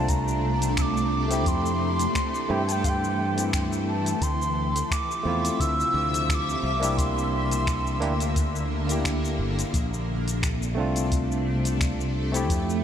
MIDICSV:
0, 0, Header, 1, 6, 480
1, 0, Start_track
1, 0, Tempo, 689655
1, 1018, Time_signature, 4, 2, 24, 8
1, 8935, End_track
2, 0, Start_track
2, 0, Title_t, "Flute"
2, 0, Program_c, 0, 73
2, 0, Note_on_c, 0, 81, 88
2, 65, Note_on_c, 0, 82, 89
2, 76, Note_off_c, 0, 81, 0
2, 546, Note_on_c, 0, 88, 92
2, 556, Note_off_c, 0, 82, 0
2, 569, Note_on_c, 0, 86, 100
2, 576, Note_off_c, 0, 88, 0
2, 1028, Note_on_c, 0, 84, 107
2, 1038, Note_off_c, 0, 86, 0
2, 1747, Note_on_c, 0, 79, 111
2, 1758, Note_off_c, 0, 84, 0
2, 1865, Note_on_c, 0, 81, 102
2, 1872, Note_off_c, 0, 79, 0
2, 1894, Note_on_c, 0, 79, 111
2, 1901, Note_off_c, 0, 81, 0
2, 1984, Note_on_c, 0, 77, 102
2, 1991, Note_off_c, 0, 79, 0
2, 2012, Note_on_c, 0, 79, 111
2, 2019, Note_off_c, 0, 77, 0
2, 2519, Note_off_c, 0, 79, 0
2, 2709, Note_on_c, 0, 81, 91
2, 2945, Note_on_c, 0, 84, 108
2, 2955, Note_off_c, 0, 81, 0
2, 3423, Note_on_c, 0, 86, 104
2, 3433, Note_off_c, 0, 84, 0
2, 3899, Note_on_c, 0, 88, 120
2, 3910, Note_off_c, 0, 86, 0
2, 4383, Note_off_c, 0, 88, 0
2, 4383, Note_on_c, 0, 88, 98
2, 4415, Note_on_c, 0, 86, 106
2, 4422, Note_off_c, 0, 88, 0
2, 4857, Note_on_c, 0, 84, 98
2, 4867, Note_off_c, 0, 86, 0
2, 5818, Note_off_c, 0, 84, 0
2, 8935, End_track
3, 0, Start_track
3, 0, Title_t, "Tine electric piano"
3, 0, Program_c, 1, 4
3, 0, Note_on_c, 1, 57, 101
3, 0, Note_on_c, 1, 60, 86
3, 0, Note_on_c, 1, 62, 88
3, 0, Note_on_c, 1, 65, 103
3, 870, Note_off_c, 1, 57, 0
3, 875, Note_off_c, 1, 60, 0
3, 881, Note_off_c, 1, 62, 0
3, 887, Note_off_c, 1, 65, 0
3, 892, Note_on_c, 1, 57, 93
3, 906, Note_on_c, 1, 60, 90
3, 916, Note_on_c, 1, 64, 88
3, 926, Note_on_c, 1, 67, 109
3, 1704, Note_off_c, 1, 57, 0
3, 1710, Note_off_c, 1, 60, 0
3, 1716, Note_off_c, 1, 64, 0
3, 1720, Note_off_c, 1, 67, 0
3, 1729, Note_on_c, 1, 57, 102
3, 1734, Note_on_c, 1, 60, 90
3, 1742, Note_on_c, 1, 64, 93
3, 1746, Note_on_c, 1, 67, 109
3, 1812, Note_off_c, 1, 57, 0
3, 1815, Note_off_c, 1, 60, 0
3, 1819, Note_off_c, 1, 64, 0
3, 1820, Note_off_c, 1, 67, 0
3, 2333, Note_on_c, 1, 57, 75
3, 2345, Note_on_c, 1, 60, 68
3, 2356, Note_on_c, 1, 64, 68
3, 2367, Note_on_c, 1, 67, 82
3, 2917, Note_off_c, 1, 57, 0
3, 2923, Note_off_c, 1, 60, 0
3, 2929, Note_off_c, 1, 64, 0
3, 2934, Note_off_c, 1, 67, 0
3, 3642, Note_on_c, 1, 57, 98
3, 3654, Note_on_c, 1, 60, 88
3, 3665, Note_on_c, 1, 64, 94
3, 3676, Note_on_c, 1, 65, 106
3, 4597, Note_off_c, 1, 57, 0
3, 4603, Note_off_c, 1, 60, 0
3, 4608, Note_off_c, 1, 64, 0
3, 4614, Note_off_c, 1, 65, 0
3, 4731, Note_on_c, 1, 58, 102
3, 4743, Note_on_c, 1, 62, 94
3, 4752, Note_on_c, 1, 64, 95
3, 4764, Note_on_c, 1, 67, 107
3, 5543, Note_off_c, 1, 58, 0
3, 5549, Note_off_c, 1, 62, 0
3, 5553, Note_off_c, 1, 64, 0
3, 5559, Note_off_c, 1, 67, 0
3, 5569, Note_on_c, 1, 58, 105
3, 5574, Note_on_c, 1, 62, 96
3, 5580, Note_on_c, 1, 64, 86
3, 5587, Note_on_c, 1, 67, 112
3, 5652, Note_off_c, 1, 58, 0
3, 5654, Note_off_c, 1, 62, 0
3, 5658, Note_off_c, 1, 64, 0
3, 5661, Note_off_c, 1, 67, 0
3, 6171, Note_on_c, 1, 58, 77
3, 6182, Note_on_c, 1, 62, 64
3, 6195, Note_on_c, 1, 64, 64
3, 6206, Note_on_c, 1, 67, 84
3, 6756, Note_off_c, 1, 58, 0
3, 6762, Note_off_c, 1, 62, 0
3, 6768, Note_off_c, 1, 64, 0
3, 6773, Note_off_c, 1, 67, 0
3, 7481, Note_on_c, 1, 57, 98
3, 7493, Note_on_c, 1, 60, 85
3, 7503, Note_on_c, 1, 62, 90
3, 7515, Note_on_c, 1, 65, 106
3, 8548, Note_off_c, 1, 57, 0
3, 8555, Note_off_c, 1, 60, 0
3, 8560, Note_off_c, 1, 62, 0
3, 8566, Note_off_c, 1, 65, 0
3, 8572, Note_on_c, 1, 57, 104
3, 8584, Note_on_c, 1, 60, 90
3, 8595, Note_on_c, 1, 64, 94
3, 8606, Note_on_c, 1, 67, 107
3, 8935, Note_off_c, 1, 57, 0
3, 8935, Note_off_c, 1, 60, 0
3, 8935, Note_off_c, 1, 64, 0
3, 8935, Note_off_c, 1, 67, 0
3, 8935, End_track
4, 0, Start_track
4, 0, Title_t, "Ambient pad"
4, 0, Program_c, 2, 92
4, 0, Note_on_c, 2, 48, 82
4, 0, Note_on_c, 2, 57, 74
4, 0, Note_on_c, 2, 62, 91
4, 998, Note_off_c, 2, 48, 0
4, 999, Note_off_c, 2, 62, 0
4, 1017, Note_on_c, 2, 52, 80
4, 2910, Note_off_c, 2, 57, 0
4, 2918, Note_off_c, 2, 52, 0
4, 2935, Note_on_c, 2, 53, 79
4, 2936, Note_on_c, 2, 76, 94
4, 2937, Note_on_c, 2, 48, 80
4, 4600, Note_off_c, 2, 53, 0
4, 4601, Note_off_c, 2, 48, 0
4, 4620, Note_on_c, 2, 50, 83
4, 4620, Note_on_c, 2, 58, 71
4, 6749, Note_off_c, 2, 76, 0
4, 6757, Note_off_c, 2, 50, 0
4, 6757, Note_off_c, 2, 58, 0
4, 6776, Note_on_c, 2, 62, 92
4, 6779, Note_on_c, 2, 48, 84
4, 6779, Note_on_c, 2, 57, 75
4, 8678, Note_off_c, 2, 62, 0
4, 8679, Note_off_c, 2, 48, 0
4, 8935, Note_off_c, 2, 57, 0
4, 8935, End_track
5, 0, Start_track
5, 0, Title_t, "Fingered electric bass"
5, 0, Program_c, 3, 33
5, 0, Note_on_c, 3, 36, 84
5, 1016, Note_off_c, 3, 36, 0
5, 1016, Note_on_c, 3, 41, 81
5, 1434, Note_off_c, 3, 41, 0
5, 1739, Note_on_c, 3, 43, 84
5, 2875, Note_off_c, 3, 43, 0
5, 2934, Note_on_c, 3, 38, 86
5, 3353, Note_off_c, 3, 38, 0
5, 3656, Note_on_c, 3, 40, 84
5, 3818, Note_off_c, 3, 40, 0
5, 3897, Note_on_c, 3, 38, 93
5, 4058, Note_off_c, 3, 38, 0
5, 4135, Note_on_c, 3, 38, 106
5, 4553, Note_off_c, 3, 38, 0
5, 4617, Note_on_c, 3, 36, 100
5, 5578, Note_off_c, 3, 36, 0
5, 5578, Note_on_c, 3, 38, 85
5, 6532, Note_off_c, 3, 38, 0
5, 6536, Note_on_c, 3, 31, 85
5, 6698, Note_off_c, 3, 31, 0
5, 6777, Note_on_c, 3, 34, 103
5, 7500, Note_off_c, 3, 34, 0
5, 7500, Note_on_c, 3, 36, 82
5, 8695, Note_off_c, 3, 36, 0
5, 8695, Note_on_c, 3, 41, 83
5, 8935, Note_off_c, 3, 41, 0
5, 8935, End_track
6, 0, Start_track
6, 0, Title_t, "Drums"
6, 58, Note_on_c, 9, 36, 101
6, 59, Note_on_c, 9, 42, 59
6, 65, Note_on_c, 9, 82, 55
6, 128, Note_off_c, 9, 36, 0
6, 129, Note_off_c, 9, 42, 0
6, 135, Note_off_c, 9, 82, 0
6, 196, Note_on_c, 9, 82, 33
6, 265, Note_off_c, 9, 82, 0
6, 431, Note_on_c, 9, 42, 45
6, 437, Note_on_c, 9, 82, 65
6, 500, Note_off_c, 9, 42, 0
6, 506, Note_off_c, 9, 82, 0
6, 537, Note_on_c, 9, 26, 104
6, 537, Note_on_c, 9, 42, 56
6, 538, Note_on_c, 9, 36, 111
6, 543, Note_on_c, 9, 82, 54
6, 606, Note_off_c, 9, 26, 0
6, 606, Note_off_c, 9, 42, 0
6, 607, Note_off_c, 9, 36, 0
6, 612, Note_off_c, 9, 82, 0
6, 676, Note_on_c, 9, 82, 32
6, 745, Note_off_c, 9, 82, 0
6, 909, Note_on_c, 9, 42, 49
6, 915, Note_on_c, 9, 82, 65
6, 979, Note_off_c, 9, 42, 0
6, 985, Note_off_c, 9, 82, 0
6, 1017, Note_on_c, 9, 36, 105
6, 1018, Note_on_c, 9, 42, 57
6, 1024, Note_on_c, 9, 82, 55
6, 1087, Note_off_c, 9, 36, 0
6, 1087, Note_off_c, 9, 42, 0
6, 1094, Note_off_c, 9, 82, 0
6, 1155, Note_on_c, 9, 82, 35
6, 1224, Note_off_c, 9, 82, 0
6, 1388, Note_on_c, 9, 42, 46
6, 1394, Note_on_c, 9, 82, 72
6, 1458, Note_off_c, 9, 42, 0
6, 1464, Note_off_c, 9, 82, 0
6, 1496, Note_on_c, 9, 36, 105
6, 1498, Note_on_c, 9, 26, 108
6, 1498, Note_on_c, 9, 42, 57
6, 1505, Note_on_c, 9, 82, 57
6, 1566, Note_off_c, 9, 36, 0
6, 1568, Note_off_c, 9, 26, 0
6, 1568, Note_off_c, 9, 42, 0
6, 1574, Note_off_c, 9, 82, 0
6, 1634, Note_on_c, 9, 82, 34
6, 1704, Note_off_c, 9, 82, 0
6, 1870, Note_on_c, 9, 42, 45
6, 1876, Note_on_c, 9, 82, 68
6, 1939, Note_off_c, 9, 42, 0
6, 1946, Note_off_c, 9, 82, 0
6, 1977, Note_on_c, 9, 36, 107
6, 1979, Note_on_c, 9, 42, 53
6, 1985, Note_on_c, 9, 82, 61
6, 2046, Note_off_c, 9, 36, 0
6, 2049, Note_off_c, 9, 42, 0
6, 2055, Note_off_c, 9, 82, 0
6, 2117, Note_on_c, 9, 82, 37
6, 2186, Note_off_c, 9, 82, 0
6, 2350, Note_on_c, 9, 42, 44
6, 2357, Note_on_c, 9, 82, 69
6, 2420, Note_off_c, 9, 42, 0
6, 2426, Note_off_c, 9, 82, 0
6, 2457, Note_on_c, 9, 36, 113
6, 2459, Note_on_c, 9, 26, 110
6, 2459, Note_on_c, 9, 42, 56
6, 2465, Note_on_c, 9, 82, 57
6, 2527, Note_off_c, 9, 36, 0
6, 2528, Note_off_c, 9, 26, 0
6, 2528, Note_off_c, 9, 42, 0
6, 2535, Note_off_c, 9, 82, 0
6, 2594, Note_on_c, 9, 82, 34
6, 2663, Note_off_c, 9, 82, 0
6, 2828, Note_on_c, 9, 42, 45
6, 2834, Note_on_c, 9, 82, 72
6, 2897, Note_off_c, 9, 42, 0
6, 2904, Note_off_c, 9, 82, 0
6, 2935, Note_on_c, 9, 42, 58
6, 2937, Note_on_c, 9, 36, 98
6, 2941, Note_on_c, 9, 82, 60
6, 3005, Note_off_c, 9, 42, 0
6, 3006, Note_off_c, 9, 36, 0
6, 3011, Note_off_c, 9, 82, 0
6, 3076, Note_on_c, 9, 82, 35
6, 3145, Note_off_c, 9, 82, 0
6, 3311, Note_on_c, 9, 42, 42
6, 3317, Note_on_c, 9, 82, 70
6, 3381, Note_off_c, 9, 42, 0
6, 3387, Note_off_c, 9, 82, 0
6, 3417, Note_on_c, 9, 36, 110
6, 3422, Note_on_c, 9, 26, 106
6, 3422, Note_on_c, 9, 42, 55
6, 3428, Note_on_c, 9, 82, 61
6, 3487, Note_off_c, 9, 36, 0
6, 3492, Note_off_c, 9, 26, 0
6, 3492, Note_off_c, 9, 42, 0
6, 3498, Note_off_c, 9, 82, 0
6, 3558, Note_on_c, 9, 82, 33
6, 3628, Note_off_c, 9, 82, 0
6, 3791, Note_on_c, 9, 42, 46
6, 3798, Note_on_c, 9, 82, 69
6, 3861, Note_off_c, 9, 42, 0
6, 3867, Note_off_c, 9, 82, 0
6, 3898, Note_on_c, 9, 36, 110
6, 3902, Note_on_c, 9, 42, 51
6, 3908, Note_on_c, 9, 82, 60
6, 3968, Note_off_c, 9, 36, 0
6, 3971, Note_off_c, 9, 42, 0
6, 3978, Note_off_c, 9, 82, 0
6, 4039, Note_on_c, 9, 82, 34
6, 4109, Note_off_c, 9, 82, 0
6, 4275, Note_on_c, 9, 42, 41
6, 4281, Note_on_c, 9, 82, 70
6, 4344, Note_off_c, 9, 42, 0
6, 4350, Note_off_c, 9, 82, 0
6, 4378, Note_on_c, 9, 36, 121
6, 4383, Note_on_c, 9, 26, 107
6, 4383, Note_on_c, 9, 42, 57
6, 4390, Note_on_c, 9, 82, 56
6, 4448, Note_off_c, 9, 36, 0
6, 4453, Note_off_c, 9, 26, 0
6, 4453, Note_off_c, 9, 42, 0
6, 4459, Note_off_c, 9, 82, 0
6, 4519, Note_on_c, 9, 82, 33
6, 4588, Note_off_c, 9, 82, 0
6, 4751, Note_on_c, 9, 42, 44
6, 4757, Note_on_c, 9, 82, 75
6, 4821, Note_off_c, 9, 42, 0
6, 4827, Note_off_c, 9, 82, 0
6, 4859, Note_on_c, 9, 36, 111
6, 4862, Note_on_c, 9, 42, 54
6, 4868, Note_on_c, 9, 82, 59
6, 4928, Note_off_c, 9, 36, 0
6, 4931, Note_off_c, 9, 42, 0
6, 4938, Note_off_c, 9, 82, 0
6, 4999, Note_on_c, 9, 82, 34
6, 5069, Note_off_c, 9, 82, 0
6, 5230, Note_on_c, 9, 42, 43
6, 5236, Note_on_c, 9, 82, 73
6, 5299, Note_off_c, 9, 42, 0
6, 5306, Note_off_c, 9, 82, 0
6, 5338, Note_on_c, 9, 36, 111
6, 5340, Note_on_c, 9, 26, 102
6, 5340, Note_on_c, 9, 42, 53
6, 5346, Note_on_c, 9, 82, 59
6, 5407, Note_off_c, 9, 36, 0
6, 5410, Note_off_c, 9, 26, 0
6, 5410, Note_off_c, 9, 42, 0
6, 5416, Note_off_c, 9, 82, 0
6, 5475, Note_on_c, 9, 82, 31
6, 5545, Note_off_c, 9, 82, 0
6, 5581, Note_on_c, 9, 42, 30
6, 5650, Note_off_c, 9, 42, 0
6, 5710, Note_on_c, 9, 42, 43
6, 5716, Note_on_c, 9, 82, 71
6, 5780, Note_off_c, 9, 42, 0
6, 5786, Note_off_c, 9, 82, 0
6, 5818, Note_on_c, 9, 36, 111
6, 5820, Note_on_c, 9, 42, 51
6, 5826, Note_on_c, 9, 82, 61
6, 5888, Note_off_c, 9, 36, 0
6, 5889, Note_off_c, 9, 42, 0
6, 5895, Note_off_c, 9, 82, 0
6, 5955, Note_on_c, 9, 82, 34
6, 6025, Note_off_c, 9, 82, 0
6, 6189, Note_on_c, 9, 42, 39
6, 6196, Note_on_c, 9, 82, 68
6, 6259, Note_off_c, 9, 42, 0
6, 6265, Note_off_c, 9, 82, 0
6, 6297, Note_on_c, 9, 36, 104
6, 6300, Note_on_c, 9, 26, 100
6, 6300, Note_on_c, 9, 42, 54
6, 6306, Note_on_c, 9, 82, 54
6, 6367, Note_off_c, 9, 36, 0
6, 6369, Note_off_c, 9, 26, 0
6, 6369, Note_off_c, 9, 42, 0
6, 6375, Note_off_c, 9, 82, 0
6, 6438, Note_on_c, 9, 82, 34
6, 6507, Note_off_c, 9, 82, 0
6, 6672, Note_on_c, 9, 42, 44
6, 6679, Note_on_c, 9, 82, 69
6, 6742, Note_off_c, 9, 42, 0
6, 6748, Note_off_c, 9, 82, 0
6, 6777, Note_on_c, 9, 36, 101
6, 6779, Note_on_c, 9, 42, 53
6, 6785, Note_on_c, 9, 82, 56
6, 6846, Note_off_c, 9, 36, 0
6, 6848, Note_off_c, 9, 42, 0
6, 6854, Note_off_c, 9, 82, 0
6, 6917, Note_on_c, 9, 82, 33
6, 6987, Note_off_c, 9, 82, 0
6, 7152, Note_on_c, 9, 42, 47
6, 7159, Note_on_c, 9, 82, 70
6, 7222, Note_off_c, 9, 42, 0
6, 7228, Note_off_c, 9, 82, 0
6, 7257, Note_on_c, 9, 36, 107
6, 7259, Note_on_c, 9, 26, 102
6, 7259, Note_on_c, 9, 42, 55
6, 7266, Note_on_c, 9, 82, 59
6, 7327, Note_off_c, 9, 36, 0
6, 7329, Note_off_c, 9, 26, 0
6, 7329, Note_off_c, 9, 42, 0
6, 7335, Note_off_c, 9, 82, 0
6, 7395, Note_on_c, 9, 82, 32
6, 7464, Note_off_c, 9, 82, 0
6, 7627, Note_on_c, 9, 42, 43
6, 7634, Note_on_c, 9, 82, 70
6, 7697, Note_off_c, 9, 42, 0
6, 7703, Note_off_c, 9, 82, 0
6, 7737, Note_on_c, 9, 36, 106
6, 7738, Note_on_c, 9, 42, 56
6, 7744, Note_on_c, 9, 82, 54
6, 7807, Note_off_c, 9, 36, 0
6, 7807, Note_off_c, 9, 42, 0
6, 7814, Note_off_c, 9, 82, 0
6, 7876, Note_on_c, 9, 82, 35
6, 7946, Note_off_c, 9, 82, 0
6, 8109, Note_on_c, 9, 42, 41
6, 8116, Note_on_c, 9, 82, 65
6, 8179, Note_off_c, 9, 42, 0
6, 8185, Note_off_c, 9, 82, 0
6, 8217, Note_on_c, 9, 36, 107
6, 8218, Note_on_c, 9, 26, 93
6, 8218, Note_on_c, 9, 42, 54
6, 8224, Note_on_c, 9, 82, 56
6, 8287, Note_off_c, 9, 26, 0
6, 8287, Note_off_c, 9, 36, 0
6, 8287, Note_off_c, 9, 42, 0
6, 8294, Note_off_c, 9, 82, 0
6, 8356, Note_on_c, 9, 82, 34
6, 8425, Note_off_c, 9, 82, 0
6, 8591, Note_on_c, 9, 42, 42
6, 8597, Note_on_c, 9, 82, 66
6, 8660, Note_off_c, 9, 42, 0
6, 8666, Note_off_c, 9, 82, 0
6, 8697, Note_on_c, 9, 36, 98
6, 8700, Note_on_c, 9, 42, 56
6, 8706, Note_on_c, 9, 82, 55
6, 8767, Note_off_c, 9, 36, 0
6, 8770, Note_off_c, 9, 42, 0
6, 8776, Note_off_c, 9, 82, 0
6, 8838, Note_on_c, 9, 82, 32
6, 8907, Note_off_c, 9, 82, 0
6, 8935, End_track
0, 0, End_of_file